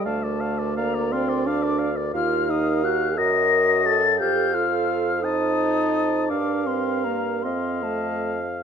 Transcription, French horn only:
\new Staff \with { instrumentName = "French horn" } { \time 6/8 \key bes \major \tempo 4. = 57 a4 bes8 c'8 d'8 r8 | f'8 ees'8 ges'8 bes'4 a'8 | g'8 f'4 ees'4. | d'8 c'8 bes8 c'8 a8 r8 | }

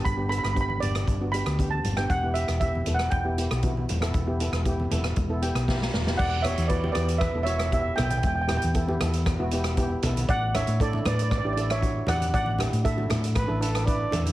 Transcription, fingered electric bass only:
\new Staff \with { instrumentName = "Fingered electric bass" } { \clef bass \time 4/4 \key e \dorian \tempo 4 = 117 g,,8. g,,8. g,,8 g,,8. d,8. g,,8 | e,,8. e,,8. e,,8 e,,8. b,,8. e,,8 | e,,8. e,,8. e,,8 e,,8. b,,8. e,,8 | e,,8. e,8. e,8. e,,4~ e,,16 b,,8 |
e,,8. e,8. e,8. e,,4~ e,,16 b,,8 | a,,8. a,8. a,8. a,,4~ a,,16 e,8 | a,,8. a,8. a,8. a,,4~ a,,16 e,8 | }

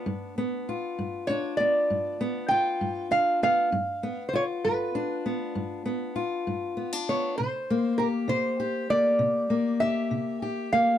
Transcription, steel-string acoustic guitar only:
\new Staff \with { instrumentName = "Steel-string acoustic guitar" } { \time 12/8 \key g \mixolydian \tempo 4. = 66 << { r8 b8 f'4 d'8 b4 b8 f'4 d'8 b8 | r8 b8 f'4 d'8 b4 b8 f'4 b16 d'16 b8 | r8 bes8 g'4 g'8 bes4 bes8 g'4 g'8 bes8 | } \\ { g,4 r8 g,4 r8 g,4 r8 g,4 r8 | g,4 r8 g,4 r8 g,4 r8 g,4 r8 | c4 r8 c4 r8 c4 r8 c4 r8 | } >> }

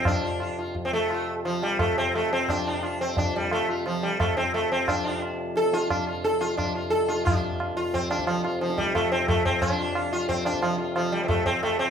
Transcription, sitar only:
\new Staff \with { instrumentName = "Sitar" } { \time 7/4 \tempo 4 = 176 << { r8 f'8 f'8 f'8 r4 f'8 r2. r8 | r8 f'8 f'8 r2 f'8 r2. | r8 f'8 r2 r8 f'8 r4. f'8 r4 | f'8 r2. f'8 r2. |
r8 f'8 f'8 r2 f'8 r2. | } \\ { d'4. r8. c'16 a4~ a16 r16 f8 g8 a8 c'8 a8 c'8 | d'4. c'8 d'8 g8 a8 r8 f8 g8 a8 c'8 a8 c'8 | d'4. r8 a'8 f'8 d'8 r8 a'8 f'8 d'8 r8 a'8 f'8 | d'4. f'8 c'8 d'8 f8 r8 f8 g8 a8 c'8 a8 c'8 |
d'4. f'8 c'8 d'8 f8 r8 f8 g16. c'32 a8 c'8 a8 c'8 | } >> }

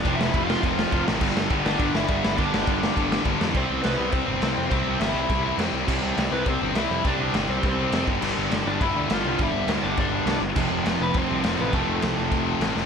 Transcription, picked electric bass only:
\new Staff \with { instrumentName = "Picked electric bass" } { \clef bass \time 4/4 \key c \major \tempo 4 = 205 f,,8 f,,8 f,,4 f,,4 f,,8 a,,8 | g,,8 g,,8 g,,8 g,,8 g,,8 g,,8 g,,8 g,,8 | g,,8 g,,8 g,,4 g,,4 g,,8 f,8 | c,8 c,8 c,8 c,8 c,8 g,,8 c,8 f,8 |
c,8 c,8 g,,8 c,8 c,4 f,8 c,8 | c,8 c,8 c,8 c,8 c,8 g,,8 c,8 f,8 | c,8 c,8 g,,8 c,8 c,4 f,8 g,,8 | g,,8 g,,8 g,,8 g,,8 g,,8 d,8 g,,8 c,8 |
g,,8 g,,8 d,8 g,,8 g,,4 c,8 g,,8 | f,,8 f,,8 f,,8 f,,8 f,,8 c,8 f,,8 a,,8 | f,,8 f,,8 c,8 f,,8 f,,4 a,,8 f,,8 | }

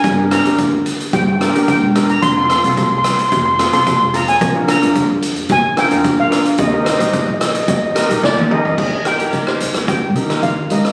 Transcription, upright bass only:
\new Staff \with { instrumentName = "Upright bass" } { \clef bass \time 4/4 \key ees \major \tempo 4 = 110 g,,8. d,8 d,8. g,,8. d,8 fes,,8. | f,,8. c,8 c,8. f,,8. c,8 f,,8. | bes,,8. f,8 f,8. bes,,8. f,8 bes,,8. | ees,8. bes,,8 bes,,8. ees,8. bes,,8 ees,8. |
ees,8 r4 ees,16 ees,8. ees4 des,16 r16 | }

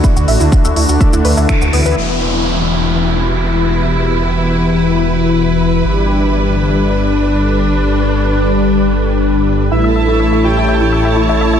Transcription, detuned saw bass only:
\new Staff \with { instrumentName = "Detuned saw bass" } { \clef bass \time 4/4 \key e \dorian \tempo 4 = 124 r16 d,16 a,,16 d,16 r16 d,16 d,16 d,16 r16 d,16 d,16 d,16 r16 d,16 d,16 d,16 | e,,1~ | e,,1 | g,,1~ |
g,,1 | a,,1 | }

